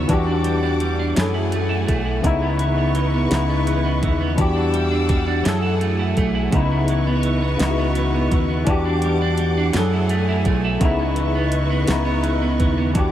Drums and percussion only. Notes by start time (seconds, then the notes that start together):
0.09 kick, closed hi-hat
0.44 closed hi-hat
0.80 closed hi-hat
1.16 snare, closed hi-hat
1.52 closed hi-hat
1.88 kick, closed hi-hat
2.24 kick, closed hi-hat
2.59 closed hi-hat
2.95 closed hi-hat
3.31 snare, closed hi-hat
3.67 closed hi-hat
4.03 kick, closed hi-hat
4.38 kick, closed hi-hat
4.74 closed hi-hat
5.09 kick, closed hi-hat
5.45 snare, closed hi-hat
5.81 closed hi-hat
6.17 kick, closed hi-hat
6.52 kick, closed hi-hat
6.88 closed hi-hat
7.23 closed hi-hat
7.59 snare, closed hi-hat
7.95 closed hi-hat
8.32 kick, closed hi-hat
8.67 kick, closed hi-hat
9.02 closed hi-hat
9.38 closed hi-hat
9.73 snare, closed hi-hat
10.09 closed hi-hat
10.45 kick, closed hi-hat
10.81 kick, closed hi-hat
11.16 closed hi-hat
11.52 closed hi-hat
11.87 snare, closed hi-hat
12.24 closed hi-hat
12.60 kick, closed hi-hat
12.95 kick, closed hi-hat